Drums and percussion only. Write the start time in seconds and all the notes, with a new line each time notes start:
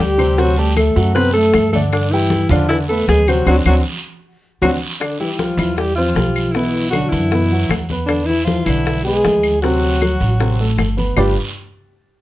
0.00 high bongo, low bongo, high conga, short guiro, maracas
0.19 short guiro, claves, maracas
0.38 high bongo, high conga, long guiro, maracas
0.57 high bongo, high conga, maracas
0.77 high bongo, high conga, short guiro, claves, maracas
0.96 high bongo, short guiro, maracas
1.15 high bongo, high conga, long guiro, maracas
1.35 high conga, maracas
1.54 high bongo, low bongo, high conga, short guiro, claves, maracas
1.73 high bongo, high conga, short guiro, maracas
1.92 high bongo, high conga, long guiro, claves, maracas
2.13 maracas
2.30 high bongo, high conga, short guiro, maracas
2.49 high conga, low conga, short guiro, claves, maracas
2.69 high bongo, high conga, long guiro, maracas
2.88 high conga, maracas
3.08 high bongo, low bongo, high conga, short guiro, maracas
3.27 short guiro, claves, maracas
3.46 low bongo, high conga, long guiro, claves, maracas
3.65 low bongo, high conga, long guiro, claves, maracas
4.62 low bongo, high conga, long guiro, claves, maracas
5.00 high bongo, high conga, long guiro, claves, maracas
5.20 high conga, maracas
5.39 high bongo, high conga, short guiro, maracas
5.58 high conga, short guiro, claves, maracas
5.77 high bongo, high conga, long guiro, maracas
5.97 high conga, maracas
6.16 high bongo, low bongo, high conga, short guiro, maracas
6.35 short guiro, claves, maracas
6.54 high bongo, high conga, long guiro, maracas
6.74 high bongo, high conga, maracas
6.92 high bongo, high conga, short guiro, claves, maracas
7.12 high bongo, high conga, short guiro, maracas
7.31 high bongo, high conga, long guiro, maracas
7.52 high conga, maracas
7.70 high bongo, low bongo, high conga, short guiro, claves, maracas
7.89 high bongo, high conga, short guiro, maracas
8.08 high bongo, high conga, long guiro, claves, maracas
8.28 high conga, maracas
8.47 high bongo, high conga, short guiro, maracas
8.66 high conga, short guiro, claves, maracas
8.86 high bongo, high conga, long guiro, maracas
9.05 high conga, maracas
9.24 high bongo, low bongo, high conga, short guiro, maracas
9.43 short guiro, claves, maracas
9.62 high bongo, high conga, long guiro, maracas
9.83 high bongo, high conga, maracas
10.01 high bongo, high conga, short guiro, claves, maracas
10.20 high bongo, high conga, short guiro, maracas
10.40 high bongo, high conga, long guiro, maracas
10.59 high conga, maracas
10.78 high bongo, low bongo, high conga, short guiro, claves, maracas
10.98 high bongo, high conga, short guiro, maracas
11.17 low bongo, low conga, long guiro, claves, maracas